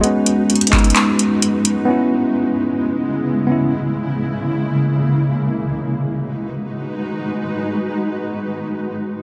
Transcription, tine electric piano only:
0.00 0.70 G#3 loud
0.00 0.03 B3 medium
0.00 0.50 B3 medium
0.00 1.90 F#4 loud
0.06 0.51 C#4 loud
0.70 1.34 G#3 medium
0.70 1.35 B3 medium
0.75 1.36 D#4 medium
1.85 2.49 B3 loud
1.85 2.50 C#4 medium
1.90 2.51 E4 loud
3.47 3.64 B3 medium
3.47 3.65 C#4 medium
3.52 3.66 E4 medium

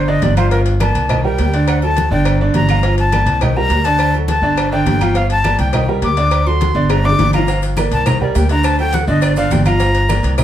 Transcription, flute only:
0.00 0.10 C5 medium
0.09 0.25 D#5 loud
0.23 0.37 D5 medium
0.37 0.51 C5 medium
0.51 0.60 A#4 medium
0.81 1.21 A5 medium
1.24 1.70 G5 medium
1.69 1.82 F#5 medium
1.83 2.10 A5 medium
2.12 2.39 G5 loud
2.55 2.96 A#5 medium
2.99 3.44 A5 medium
3.42 3.58 G5 medium
3.57 3.86 A#5 loud
3.85 4.14 A5 loud
4.29 4.69 A5 medium
4.72 5.18 G5 medium
5.16 5.30 F5 medium
5.31 5.58 A5 loud
5.60 5.87 G5 medium
6.04 6.48 D6 medium
6.47 6.93 C6 medium
6.91 7.07 A#5 medium
7.05 7.33 D6 loud
7.34 7.61 A#5 medium
7.93 8.08 A5 medium
8.06 8.21 A#5 loud
8.22 8.37 D5 medium
8.36 8.50 G5 medium
8.51 8.66 A#5 loud
8.65 8.79 A5 loud
8.80 8.96 G5 medium
8.94 9.08 F#5 medium
9.09 9.24 D#5 medium
9.22 9.37 D5 medium
9.37 9.53 F5 loud
9.52 9.65 G5 medium
9.66 10.34 A#5 loud

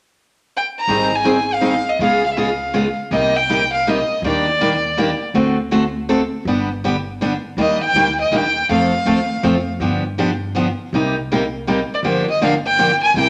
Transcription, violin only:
0.57 0.66 G5 medium
0.80 1.17 A#5 medium
1.15 1.55 G#5 medium
1.53 1.91 F5 medium
1.89 2.02 D#5 medium
2.03 2.23 F5 medium
2.26 2.32 F5 medium
2.33 2.39 E5 soft
2.38 2.98 F5 medium
3.12 3.38 D#5 medium
3.36 3.73 G5 medium
3.74 3.91 F5 medium
3.90 4.25 D#5 medium
4.27 5.19 D5 medium
7.61 7.81 D#5 medium
7.84 8.17 G5 medium
8.22 8.38 D#5 medium
8.36 8.71 G5 medium
8.72 9.64 F5 medium
11.94 12.00 D5 medium
12.09 12.28 C5 medium
12.31 12.42 D#5 medium
12.44 12.54 F5 medium
12.67 13.00 G5 loud
13.03 13.16 G#5 medium
13.19 13.29 G5 loud

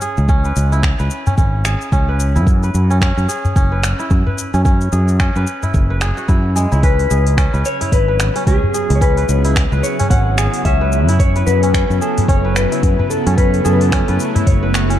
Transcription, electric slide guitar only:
6.84 7.34 B4 loud
7.66 7.91 C#5 loud
7.93 8.43 B4 medium
8.48 8.97 G#4 medium
8.95 9.01 C#5 medium
9.02 9.52 B4 medium
9.83 10.09 C#5 loud
10.10 10.65 F#5 loud
10.65 11.05 E5 loud
11.20 11.45 C#5 loud
11.47 11.97 B4 loud
12.02 12.30 A4 medium
12.29 12.56 C#5 loud
12.56 13.07 B4 medium
13.10 13.38 A4 medium
13.38 13.66 B4 medium
13.65 13.73 A4 medium
13.73 13.81 B4 medium
13.81 14.49 A4 medium
14.47 14.99 C#5 medium

